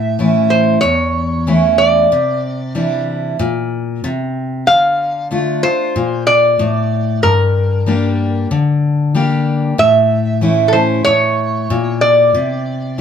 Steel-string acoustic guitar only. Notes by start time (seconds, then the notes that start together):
Already playing: A2
0.19 E3 A3 C#4 E4
0.83 E2
1.47 E3 A3 C#4 E4
2.12 C3
2.75 E3 G3 D4 E4
3.39 A#2
4.04 C3
4.67 D3
5.31 D3 A3 D4 F4
5.63 D4 F4
5.96 A#2
6.59 A2
7.23 G2
7.86 G3 A#3 D4 G4
8.51 D3
9.15 G3 A#3 D4 G4
9.78 A2
10.41 E3 A3 C#4 E4
10.74 C#4 E4
11.06 A2
11.70 A#2
12.35 C3